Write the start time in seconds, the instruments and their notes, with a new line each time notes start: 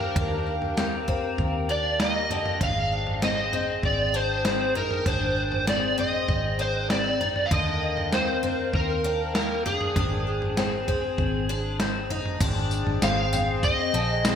Already playing: fingered electric bass D#2, twelve-string acoustic guitar D4, flute section G4 A#4 F5 G5, electric slide guitar A#4
0.01 floor tom
0.16 fingered electric bass D#2, twelve-string acoustic guitar D4, kick, floor tom
0.62 floor tom
0.77 twelve-string acoustic guitar C4, snare
1.08 twelve-string acoustic guitar C4, kick, floor tom
1.38 fingered electric bass D#2, kick, floor tom
1.69 twelve-string acoustic guitar D4, electric slide guitar D5
2.00 twelve-string acoustic guitar A#3, electric slide guitar D#5, snare
2.30 twelve-string acoustic guitar D3, floor tom
2.46 floor tom
2.61 fingered electric bass G#1, twelve-string acoustic guitar D4, flute section G#4 C5 G5, electric slide guitar F5, kick, floor tom
3.07 floor tom
3.22 twelve-string acoustic guitar C4, electric slide guitar D#5, snare
3.53 twelve-string acoustic guitar C4, floor tom
3.83 fingered electric bass G#1, electric slide guitar D5, kick, floor tom
4.14 twelve-string acoustic guitar D4, electric slide guitar C5
4.45 twelve-string acoustic guitar C4, snare
4.75 twelve-string acoustic guitar D#4, electric slide guitar A#4, floor tom
4.91 floor tom
5.06 fingered electric bass G#1, twelve-string acoustic guitar D4, electric slide guitar C5, kick, floor tom
5.52 floor tom
5.67 twelve-string acoustic guitar C4, electric slide guitar D5, snare
5.98 twelve-string acoustic guitar C4, electric slide guitar D#5, floor tom
6.28 fingered electric bass G#1, kick, floor tom
6.59 twelve-string acoustic guitar D4, electric slide guitar C5
6.90 twelve-string acoustic guitar C4, electric slide guitar D5, snare
7.21 twelve-string acoustic guitar D#4, floor tom
7.36 floor tom
7.46 electric slide guitar F5
7.51 fingered electric bass D#2, twelve-string acoustic guitar D3, flute section A#4 F5, electric slide guitar D#5, kick, floor tom
7.97 floor tom
8.12 twelve-string acoustic guitar C4, electric slide guitar C5, snare
8.43 twelve-string acoustic guitar C4, floor tom
8.73 fingered electric bass D#2, electric slide guitar A#4, kick, floor tom
9.04 twelve-string acoustic guitar D4
9.35 twelve-string acoustic guitar A#3, electric slide guitar A#4, snare
9.66 twelve-string acoustic guitar D4, electric slide guitar G#4, floor tom
9.81 floor tom
9.96 fingered electric bass G#1, twelve-string acoustic guitar D4, flute section G#4 C5, kick, floor tom
10.42 floor tom
10.57 twelve-string acoustic guitar C4, snare
10.88 twelve-string acoustic guitar C4, kick, floor tom
11.18 fingered electric bass G#1, kick, floor tom
11.49 twelve-string acoustic guitar D4
11.80 twelve-string acoustic guitar C4, snare
12.10 twelve-string acoustic guitar D#4, floor tom
12.26 floor tom
12.40 fingered electric bass G#1, twelve-string acoustic guitar D4, flute section G#4 C5 G5, kick, floor tom, crash, tambourine
12.71 tambourine
12.87 fingered electric bass G#1, floor tom
13.02 fingered electric bass G#1, twelve-string acoustic guitar C4, electric slide guitar F5, snare, tambourine
13.33 twelve-string acoustic guitar C4, floor tom, tambourine
13.63 electric slide guitar D#5, kick, floor tom, tambourine
13.94 fingered electric bass A#1, twelve-string acoustic guitar D3
14.25 twelve-string acoustic guitar C4, snare, tambourine